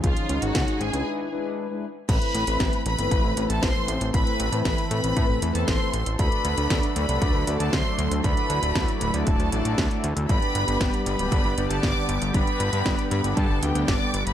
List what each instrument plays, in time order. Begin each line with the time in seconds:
Already playing: analog synth pad D#3
0.04 analog synth bass C#2, analog polysynth F3 C#4 D#4 G#4, analog synth pad G#3 C#4 D#4, violin section F4 F5, kick, closed hi-hat
0.17 closed hi-hat
0.29 analog synth bass C#2, closed hi-hat
0.42 analog synth bass G#1, analog polysynth D#3 C#4 D#4 G#4, violin section F#4 F#5, closed hi-hat
0.55 analog synth bass C#2, kick, snare, closed hi-hat
0.68 closed hi-hat
0.81 analog synth bass G#1, violin section G#4 G#5, closed hi-hat
0.93 analog synth bass C#2, analog polysynth G#3 D4 E4 B4, closed hi-hat
1.32 analog polysynth G#3 D4 E4 B4
1.70 analog polysynth G#3 D4 E4 B4
2.09 analog synth bass A1, analog synth pad E3 C4 A4, analog polysynth A3 C4 E4 B4, violin section B4 B5, kick, closed hi-hat, crash
2.22 closed hi-hat
2.34 analog synth bass A1, closed hi-hat
2.47 analog synth bass A1, analog polysynth A3 C4 E4 B4, closed hi-hat
2.60 analog synth bass A1, kick, snare, closed hi-hat
2.73 closed hi-hat
2.86 analog synth bass A1, violin section B4 B5, closed hi-hat
2.99 analog synth bass G1, analog polysynth A3 C4 E4 B4, closed hi-hat
3.11 analog synth bass A1, kick, closed hi-hat
3.24 analog synth bass A1
3.37 analog synth bass A1, analog polysynth A3 C4 E4 B4, closed hi-hat
3.50 analog synth bass A1, violin section A4 A5, closed hi-hat
3.63 analog synth bass A1, violin section C5 C6, kick, snare, closed hi-hat
3.75 analog polysynth A3 C4 E4 B4
3.88 analog synth bass A1, closed hi-hat
4.01 analog synth bass A1, closed hi-hat
4.14 analog synth bass A1, analog polysynth A3 C4 E4 B4, violin section B4 B5, kick, closed hi-hat
4.27 closed hi-hat
4.39 analog synth bass A1, closed hi-hat
4.52 analog synth bass A2, analog polysynth A3 C4 E4 B4, closed hi-hat
4.65 analog synth bass A1, violin section B4 B5, kick, snare, closed hi-hat
4.78 closed hi-hat
4.91 analog synth bass A2, violin section B4 B5, closed hi-hat
5.04 analog synth bass A1, analog polysynth A3 C4 E4 B4, closed hi-hat
5.17 analog synth bass A2, kick, closed hi-hat
5.29 analog synth bass A1
5.42 analog synth bass E2, analog polysynth A3 C4 E4 B4, closed hi-hat
5.55 analog synth bass E2, violin section A4 A5, closed hi-hat
5.68 analog synth bass A1, violin section C5 C6, kick, snare, closed hi-hat
5.81 analog polysynth A3 C4 E4 B4
5.93 analog synth bass A1, closed hi-hat
6.06 analog synth bass A1, closed hi-hat
6.19 analog synth bass D2, analog synth pad F#3 A3 D4, analog polysynth A3 D4 F#4 D5, violin section B4 B5, kick, closed hi-hat
6.32 closed hi-hat
6.45 analog synth bass D2, closed hi-hat
6.58 analog synth bass D2, analog polysynth A3 D4 F#4 D5, closed hi-hat
6.70 analog synth bass D2, kick, snare, closed hi-hat
6.83 closed hi-hat
6.96 analog synth bass D2, violin section B4 B5, closed hi-hat
7.09 analog synth bass C2, analog polysynth A3 D4 F#4 D5, closed hi-hat
7.22 analog synth bass D2, kick, closed hi-hat
7.34 analog synth bass D2
7.47 analog synth bass D2, analog polysynth A3 D4 F#4 D5, closed hi-hat
7.60 analog synth bass D2, violin section A4 A5, closed hi-hat
7.73 analog synth bass D2, violin section C5 C6, kick, snare, closed hi-hat
7.86 analog polysynth A3 D4 F#4 D5
7.98 analog synth bass D2, closed hi-hat
8.11 analog synth bass D2, closed hi-hat
8.24 analog synth bass D2, analog polysynth A3 D4 F#4 D5, analog synth pad E4, violin section B4 B5, kick, closed hi-hat
8.37 closed hi-hat
8.50 analog synth bass D2, closed hi-hat
8.62 analog synth bass D1, analog polysynth A3 D4 F#4 D5, closed hi-hat
8.75 analog synth bass D2, kick, snare, closed hi-hat
8.88 closed hi-hat
9.01 analog synth bass D1, violin section B4 B5, closed hi-hat
9.14 analog synth bass D2, analog polysynth A3 D4 F#4 D5, closed hi-hat
9.27 analog synth bass D1, violin section A4 A5, kick, closed hi-hat
9.40 analog synth bass D2, closed hi-hat
9.52 analog synth bass A1, analog polysynth A3 D4 F#4 D5, closed hi-hat
9.65 analog synth bass A1, closed hi-hat
9.78 analog synth bass D2, kick, snare, closed hi-hat
9.91 analog polysynth A3 D4 F#4 D5, closed hi-hat
10.04 analog synth bass D2, closed hi-hat
10.16 analog synth bass D2, closed hi-hat
10.29 analog synth bass G1, analog synth pad D3 G3 B3 G4, analog polysynth B3 D4 G4 D5, violin section B4 B5, kick, closed hi-hat
10.42 closed hi-hat
10.55 analog synth bass G1, closed hi-hat
10.68 analog synth bass G1, analog polysynth B3 D4 G4 D5, closed hi-hat
10.81 analog synth bass G1, kick, snare, closed hi-hat
10.94 closed hi-hat
11.06 analog synth bass G1, violin section B4 B5, closed hi-hat
11.19 analog synth bass D1, analog polysynth B3 D4 G4 D5, closed hi-hat
11.32 analog synth bass G1, kick, closed hi-hat
11.45 analog synth bass G1
11.58 analog synth bass G1, analog polysynth B3 D4 G4 D5, closed hi-hat
11.70 analog synth bass G1, violin section A4 A5, closed hi-hat
11.83 analog synth bass G1, violin section D5 D6, kick, snare, closed hi-hat
11.96 analog polysynth B3 D4 G4 D5
12.09 analog synth bass G1, closed hi-hat
12.22 analog synth bass G1, closed hi-hat
12.34 analog synth bass G1, analog polysynth B3 D4 G4 D5, violin section B4 B5, kick, closed hi-hat
12.47 closed hi-hat
12.60 analog synth bass G1, closed hi-hat
12.73 analog synth bass G2, analog polysynth B3 D4 G4 D5, closed hi-hat
12.86 analog synth bass G1, kick, snare, closed hi-hat
12.99 closed hi-hat
13.11 analog synth bass G2, violin section B4 B5, closed hi-hat
13.24 analog synth bass G1, analog polysynth B3 D4 G4 D5, closed hi-hat
13.37 analog synth bass G2, violin section A4 A5, kick, closed hi-hat
13.50 analog synth bass G1
13.63 analog synth bass D2, analog polysynth B3 D4 G4 D5, violin section G4 G5, closed hi-hat
13.75 analog synth bass D2, closed hi-hat
13.88 analog synth bass G1, violin section D5 D6, kick, snare, closed hi-hat
14.01 analog polysynth B3 D4 G4 D5
14.14 analog synth bass G1, closed hi-hat
14.27 analog synth bass G1, violin section B4 B5, closed hi-hat